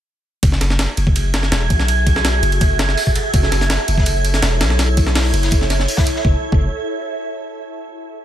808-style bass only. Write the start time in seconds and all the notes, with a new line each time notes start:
0.43 F#1
0.98 F#1
1.52 E1
1.70 B1
2.43 F#1
3.34 F#1
3.88 F#1
4.43 E1
4.61 B1
5.33 F#1
6.25 F#1
6.52 F#1